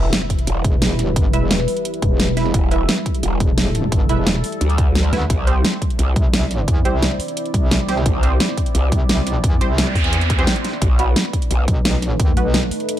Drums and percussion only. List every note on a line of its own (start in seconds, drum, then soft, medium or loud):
0.13 snare loud
0.13 closed hi-hat loud
0.21 snare soft
0.30 kick medium
0.30 closed hi-hat medium
0.39 closed hi-hat soft
0.47 closed hi-hat loud
0.64 kick loud
0.64 closed hi-hat medium
0.82 snare loud
0.82 closed hi-hat loud
0.99 snare soft
0.99 closed hi-hat medium
1.16 kick loud
1.16 closed hi-hat loud
1.33 closed hi-hat medium
1.51 snare loud
1.51 closed hi-hat loud
1.59 snare medium
1.68 open hi-hat medium
1.77 closed hi-hat soft
1.85 closed hi-hat loud
1.94 closed hi-hat soft
2.02 kick loud
2.02 closed hi-hat medium
2.20 snare loud
2.20 closed hi-hat loud
2.28 snare soft
2.37 snare soft
2.37 closed hi-hat medium
2.45 snare soft
2.54 kick loud
2.54 closed hi-hat medium
2.71 closed hi-hat medium
2.89 snare loud
2.89 closed hi-hat medium
2.97 snare soft
3.06 kick medium
3.06 closed hi-hat medium
3.15 closed hi-hat soft
3.23 closed hi-hat medium
3.40 kick loud
3.40 closed hi-hat medium
3.58 snare loud
3.58 closed hi-hat medium
3.75 snare soft
3.75 closed hi-hat medium
3.92 kick loud
3.92 closed hi-hat medium
4.09 closed hi-hat medium
4.27 snare loud
4.27 closed hi-hat medium
4.35 snare soft
4.44 open hi-hat medium
4.52 closed hi-hat soft
4.61 closed hi-hat medium
4.70 closed hi-hat soft
4.78 kick loud
4.78 closed hi-hat medium
4.95 snare loud
4.95 closed hi-hat medium
5.04 snare soft
5.13 snare soft
5.13 closed hi-hat medium
5.21 snare soft
5.30 kick loud
5.30 closed hi-hat medium
5.47 closed hi-hat medium
5.65 snare loud
5.65 closed hi-hat medium
5.73 snare soft
5.82 kick medium
5.82 closed hi-hat medium
5.90 closed hi-hat soft
5.99 closed hi-hat medium
6.16 kick loud
6.16 closed hi-hat medium
6.33 snare loud
6.33 closed hi-hat medium
6.51 snare soft
6.51 closed hi-hat medium
6.68 kick loud
6.68 closed hi-hat medium
6.85 closed hi-hat medium
7.03 snare loud
7.03 closed hi-hat medium
7.11 snare soft
7.20 open hi-hat medium
7.28 closed hi-hat soft
7.37 closed hi-hat loud
7.46 closed hi-hat soft
7.54 kick loud
7.54 closed hi-hat medium
7.71 snare loud
7.71 closed hi-hat loud
7.80 snare soft
7.89 snare soft
7.89 closed hi-hat medium
7.97 snare soft
8.06 kick loud
8.06 closed hi-hat loud
8.23 closed hi-hat medium
8.40 snare loud
8.40 closed hi-hat loud
8.49 snare soft
8.57 kick medium
8.57 closed hi-hat medium
8.66 closed hi-hat soft
8.75 closed hi-hat loud
8.92 kick loud
8.92 closed hi-hat medium
9.09 snare loud
9.09 closed hi-hat loud
9.27 snare soft
9.27 closed hi-hat medium
9.44 kick loud
9.44 closed hi-hat loud
9.61 closed hi-hat medium
9.78 snare loud
9.78 closed hi-hat loud
9.87 snare soft
9.95 kick medium
9.95 open hi-hat medium
10.04 closed hi-hat soft
10.13 closed hi-hat loud
10.21 closed hi-hat soft
10.30 kick loud
10.30 closed hi-hat medium
10.39 closed hi-hat soft
10.47 snare loud
10.47 closed hi-hat loud
10.56 snare soft
10.56 closed hi-hat soft
10.64 snare soft
10.64 closed hi-hat medium
10.73 snare soft
10.82 kick loud
10.82 closed hi-hat loud
10.99 closed hi-hat medium
11.16 snare loud
11.16 closed hi-hat loud
11.25 snare medium
11.33 kick medium
11.33 closed hi-hat medium
11.42 closed hi-hat soft
11.51 closed hi-hat loud
11.68 kick loud
11.68 closed hi-hat medium
11.85 snare loud
11.85 closed hi-hat loud
12.02 snare soft
12.02 closed hi-hat medium
12.20 kick loud
12.20 closed hi-hat loud
12.37 closed hi-hat medium
12.54 snare loud
12.54 closed hi-hat medium
12.63 snare medium
12.71 open hi-hat medium
12.80 closed hi-hat soft
12.89 closed hi-hat loud